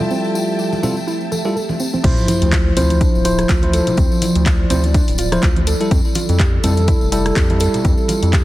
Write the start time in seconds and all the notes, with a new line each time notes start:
Already playing: F3 G3 A3 E4 F4 G4 A4 E5 G5 A5
0.00 high conga
0.11 C4, tambourine
0.24 tambourine
0.35 F4, tambourine
0.47 tambourine
0.59 G4, tambourine
0.73 tambourine, high conga
0.83 G3 C4 E4 F4 A4, tambourine, low conga
0.97 tambourine
1.07 E4, tambourine
1.21 tambourine
1.32 A4, tambourine, high conga
1.45 G3 E4 F4 G4 A4, tambourine
1.56 A4, tambourine
1.69 tambourine, high conga
1.80 C4, tambourine
1.94 C4, tambourine, high conga
2.04 D2 F3 C4 E4 C5, kick, closed hi-hat, tambourine, crash, sub drop
2.17 tambourine
2.28 E4, open hi-hat, tambourine, high conga
2.42 D2, closed hi-hat, tambourine
2.52 F4, kick, clap, closed hi-hat, tambourine
2.76 D2 F3 C4 E4 C5, open hi-hat, tambourine, low conga
2.90 closed hi-hat, tambourine, high conga
3.01 D4, kick, closed hi-hat, tambourine
3.14 D1, tambourine
3.25 F3 E4 F4 C5, open hi-hat, tambourine
3.38 cross-stick, closed hi-hat, tambourine
3.49 D2 F4, kick, clap, closed hi-hat, tambourine
3.62 F3 E4 C5, closed hi-hat, high conga
3.73 A4, open hi-hat, tambourine
3.87 closed hi-hat, tambourine, low conga
3.97 D2 C4 D5, kick, closed hi-hat, tambourine
4.12 tambourine
4.22 E4, open hi-hat, tambourine, high conga
4.35 D2, closed hi-hat, tambourine
4.46 F4, kick, clap, closed hi-hat, tambourine
4.70 D2 F3 C4 E4 C5, open hi-hat, tambourine, low conga
4.83 closed hi-hat, tambourine, high conga
4.94 D4, kick, closed hi-hat, tambourine
5.08 D1, open hi-hat, tambourine
5.18 F4, open hi-hat, tambourine
5.32 F3 E4 C5, cross-stick, closed hi-hat, tambourine
5.42 D2 F4, kick, clap, closed hi-hat, tambourine
5.56 closed hi-hat, high conga
5.67 A4, open hi-hat, tambourine
5.80 G3 E4 A4, closed hi-hat, tambourine
5.91 F2 G3 C4 A4, kick, closed hi-hat, tambourine
6.05 tambourine
6.15 F4, open hi-hat, tambourine, high conga
6.29 F2, closed hi-hat, tambourine
6.40 G4, kick, clap, closed hi-hat, tambourine
6.63 F2 G3 C4 E4 A4, open hi-hat, tambourine, low conga
6.77 closed hi-hat, tambourine, high conga
6.88 E4, kick, closed hi-hat, tambourine
7.01 F1, tambourine
7.12 G3 E4 G4 A4, open hi-hat, tambourine
7.26 cross-stick, closed hi-hat, tambourine
7.36 F2 G4, kick, clap, closed hi-hat, tambourine
7.49 G3 E4 A4, closed hi-hat, high conga
7.60 A4, open hi-hat, tambourine
7.74 closed hi-hat, tambourine, low conga
7.85 F2 C4, kick, closed hi-hat, tambourine
7.97 tambourine
8.08 F4, open hi-hat, tambourine, high conga
8.22 F2, closed hi-hat, tambourine
8.33 G4, kick, clap, closed hi-hat, tambourine